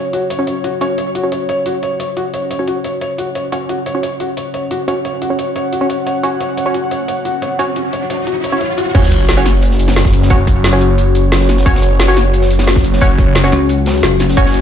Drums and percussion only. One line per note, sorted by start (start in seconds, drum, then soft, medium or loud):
0.13 closed hi-hat medium
0.30 closed hi-hat medium
0.47 closed hi-hat medium
0.64 closed hi-hat medium
0.81 closed hi-hat medium
0.98 closed hi-hat medium
1.15 closed hi-hat medium
1.32 closed hi-hat medium
1.49 closed hi-hat medium
1.66 closed hi-hat medium
1.83 closed hi-hat medium
2.00 closed hi-hat medium
2.17 closed hi-hat medium
2.34 closed hi-hat medium
2.51 closed hi-hat medium
2.68 closed hi-hat medium
2.84 closed hi-hat medium
3.01 closed hi-hat medium
3.18 closed hi-hat medium
3.35 closed hi-hat medium
3.52 closed hi-hat medium
3.69 closed hi-hat medium
3.86 closed hi-hat medium
4.03 closed hi-hat medium
4.20 closed hi-hat medium
4.37 closed hi-hat medium
4.54 closed hi-hat medium
4.71 closed hi-hat medium
4.88 closed hi-hat medium
5.05 closed hi-hat medium
5.22 closed hi-hat medium
5.39 closed hi-hat medium
5.56 closed hi-hat medium
5.73 closed hi-hat medium
5.90 closed hi-hat medium
6.07 closed hi-hat medium
6.24 closed hi-hat medium
6.40 closed hi-hat medium
6.57 closed hi-hat medium
6.74 closed hi-hat medium
6.91 closed hi-hat medium
7.08 closed hi-hat medium
7.25 closed hi-hat medium
7.42 closed hi-hat medium
7.59 closed hi-hat medium
7.76 closed hi-hat medium
7.93 closed hi-hat medium
8.10 closed hi-hat medium
8.27 closed hi-hat medium
8.44 closed hi-hat loud
8.61 closed hi-hat medium
8.78 closed hi-hat medium
8.95 kick loud
8.95 closed hi-hat medium
8.95 crash loud
9.03 snare soft
9.11 closed hi-hat medium
9.11 closed hi-hat loud
9.28 snare loud
9.28 closed hi-hat medium
9.37 closed hi-hat soft
9.45 snare medium
9.45 closed hi-hat medium
9.45 closed hi-hat loud
9.62 closed hi-hat medium
9.71 snare soft
9.79 closed hi-hat medium
9.79 closed hi-hat loud
9.88 snare medium
9.96 snare loud
9.96 closed hi-hat medium
10.05 kick loud
10.05 snare medium
10.13 closed hi-hat medium
10.13 closed hi-hat loud
10.22 snare soft
10.30 kick loud
10.30 closed hi-hat medium
10.39 closed hi-hat soft
10.47 kick loud
10.47 closed hi-hat loud
10.47 closed hi-hat medium
10.64 snare loud
10.64 closed hi-hat medium
10.81 closed hi-hat loud
10.81 closed hi-hat medium
10.98 closed hi-hat medium
11.15 closed hi-hat loud
11.15 closed hi-hat medium
11.32 snare loud
11.32 closed hi-hat medium
11.40 snare soft
11.49 snare medium
11.49 closed hi-hat loud
11.49 closed hi-hat medium
11.57 snare soft
11.66 kick loud
11.66 closed hi-hat medium
11.75 snare medium
11.81 closed hi-hat medium
11.83 closed hi-hat medium
11.99 snare loud
11.99 closed hi-hat medium
12.08 closed hi-hat soft
12.17 snare medium
12.17 closed hi-hat medium
12.33 closed hi-hat medium
12.42 snare soft
12.51 closed hi-hat medium
12.59 snare medium
12.67 snare loud
12.67 closed hi-hat medium
12.75 kick loud
12.75 snare medium
12.84 closed hi-hat medium
12.93 snare soft
13.00 kick loud
13.00 closed hi-hat medium
13.09 closed hi-hat soft
13.18 kick loud
13.18 closed hi-hat medium
13.35 snare loud
13.35 closed hi-hat loud
13.35 closed hi-hat medium
13.52 closed hi-hat medium
13.69 closed hi-hat medium
13.86 snare loud
13.86 closed hi-hat medium
13.95 closed hi-hat soft
14.03 snare loud
14.03 closed hi-hat medium
14.19 snare soft
14.19 closed hi-hat medium
14.28 snare soft
14.37 kick loud
14.37 closed hi-hat medium
14.46 snare soft
14.54 closed hi-hat medium